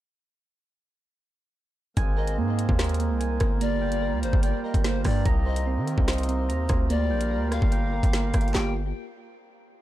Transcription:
1.97 808-style bass G#1, harmonium G#3 A#3 C4, synth keys G#5, kick, closed hi-hat
2.17 synth keys A#4, pan flute D#5
2.27 closed hi-hat
2.38 808-style bass G#2, synth keys A#3
2.59 closed hi-hat
2.69 808-style bass D#2, kick
2.79 synth keys A#4, finger snap, snare, closed hi-hat
2.84 closed hi-hat
2.89 closed hi-hat
2.94 closed hi-hat
3.00 synth keys A#3, closed hi-hat
3.10 808-style bass C2
3.20 synth keys G#5, closed hi-hat
3.40 808-style bass G1, synth keys A#4, kick, cross-stick, closed hi-hat
3.61 harmonium G3 F4 A#4, synth keys A#3, pan flute D5, closed hi-hat
3.82 synth keys G5
3.92 closed hi-hat
4.02 synth keys A#4
4.13 808-style bass D2
4.23 808-style bass G1, pan flute C5, closed hi-hat
4.33 808-style bass G1, kick
4.43 pan flute D5, synth keys G5, closed hi-hat
4.64 synth keys A#4, pan flute D#5
4.74 808-style bass G1, kick, closed hi-hat
4.84 synth keys A#3, pan flute C5, finger snap, snare
5.05 808-style bass G2, pan flute D5, synth keys G5, kick, cross-stick, open hi-hat
5.25 808-style bass C2, harmonium C3 A#3 D#4, synth keys A#5, kick, closed hi-hat
5.46 synth keys C5, pan flute D#5
5.56 closed hi-hat
5.67 synth keys C4
5.77 808-style bass D#3
5.87 closed hi-hat
5.98 808-style bass C2, kick
6.08 synth keys C5, finger snap, snare, closed hi-hat
6.13 closed hi-hat
6.18 closed hi-hat
6.23 closed hi-hat
6.28 synth keys C4, closed hi-hat
6.49 808-style bass D#2, synth keys A#5, closed hi-hat
6.69 808-style bass D2, synth keys C5, kick, cross-stick, closed hi-hat
6.90 harmonium G3 F4 A#4, synth keys A#3, pan flute D5, closed hi-hat
7.11 808-style bass A#1, synth keys G5
7.21 closed hi-hat
7.31 synth keys A#4
7.36 808-style bass D2
7.52 pan flute F5, cross-stick, closed hi-hat
7.62 808-style bass G1, kick
7.72 synth keys G5, closed hi-hat
7.93 synth keys A#4
8.03 808-style bass G1, kick, closed hi-hat
8.13 synth keys A#3, finger snap, snare
8.34 808-style bass G1, synth keys G5, kick, cross-stick, closed hi-hat, open hi-hat
8.41 closed hi-hat
8.48 closed hi-hat
8.54 808-style bass G1, harmonium G3 F4 A#4, synth keys A#3 F4 G4, pan flute G5, snare, clap

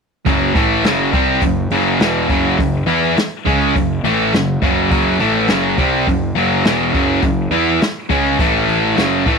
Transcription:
0.26 picked electric bass F#1, distorted electric guitar F#2 C#3 F#3, kick, open hi-hat
0.55 picked electric bass A1, distorted electric guitar A2 E3 A3, kick, open hi-hat
0.84 picked electric bass F#1, distorted electric guitar F#2 C#3 F#3, snare, open hi-hat
1.12 picked electric bass C2, distorted electric guitar C3 G3 C4, kick, open hi-hat
1.41 picked electric bass F#1, distorted electric guitar F#2 C#3, kick, open hi-hat
1.70 picked electric bass F#1, distorted electric guitar F#2 C#3 F#3, open hi-hat
2.00 picked electric bass E1, distorted electric guitar E2 B2 E3, snare, open hi-hat
2.29 picked electric bass F#1, distorted electric guitar F#2 C#3 F#3, kick, open hi-hat
2.58 picked electric bass F#1, distorted electric guitar F#2 C#3, kick, open hi-hat
2.86 picked electric bass E2, distorted electric guitar E3 B3 E4, open hi-hat
3.16 muted picked electric bass stroke, muted distorted electric guitar stroke, snare, open hi-hat
3.46 picked electric bass C#2, distorted electric guitar C#3 G#3 C#4, kick, open hi-hat
3.75 picked electric bass F#1, distorted electric guitar F#2 C#3, kick, open hi-hat
4.03 picked electric bass A1, distorted electric guitar A2 E3 A3, open hi-hat
4.33 picked electric bass F#1, distorted electric guitar F#2 C#3, snare, open hi-hat
4.62 picked electric bass F#1, distorted electric guitar F#2 C#3 F#3, kick, open hi-hat
4.90 picked electric bass F#1, distorted electric guitar F#2 C#3 F#3, kick, open hi-hat
5.19 picked electric bass A1, distorted electric guitar A2 E3 A3, open hi-hat
5.48 picked electric bass F#1, distorted electric guitar F#2 C#3 F#3, snare, open hi-hat
5.77 picked electric bass C2, distorted electric guitar C3 G3 C4, kick, open hi-hat
6.07 picked electric bass F#1, distorted electric guitar F#2 C#3, kick, open hi-hat
6.35 picked electric bass F#1, distorted electric guitar F#2 C#3 F#3, open hi-hat
6.65 picked electric bass E1, distorted electric guitar E2 B2 E3, snare, open hi-hat
6.94 picked electric bass F#1, distorted electric guitar F#2 C#3 F#3, kick, open hi-hat
7.22 picked electric bass F#1, distorted electric guitar F#2 C#3, kick, open hi-hat
7.51 picked electric bass E2, distorted electric guitar E3 B3 E4, open hi-hat
7.81 muted picked electric bass stroke, muted distorted electric guitar stroke, snare, open hi-hat
8.09 picked electric bass C#2, distorted electric guitar C#3 G#3 C#4, kick, open hi-hat
8.39 picked electric bass A1, distorted electric guitar A2 E3 A3, kick, open hi-hat
8.69 open hi-hat
8.97 picked electric bass F#1, distorted electric guitar F#2 C#3 F#3, snare, open hi-hat
9.25 picked electric bass A1, distorted electric guitar A2 E3 A3, kick, open hi-hat

